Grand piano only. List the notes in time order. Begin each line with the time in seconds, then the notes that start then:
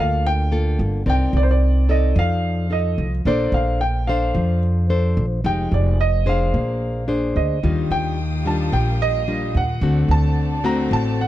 0.00 F5
0.27 G5
1.10 G5
1.37 D5
1.43 C5
1.51 D5
1.91 D#5
2.19 F5
2.72 D#5
3.27 D5
3.54 F5
3.81 G5
4.07 F5
5.46 G5
5.74 D5
6.01 D#5
6.29 F5
7.36 D#5
7.92 G5
8.47 A5
8.73 G5
9.02 D#5
9.57 F#5
10.11 A5
10.66 A#5
10.93 A5
11.21 F#5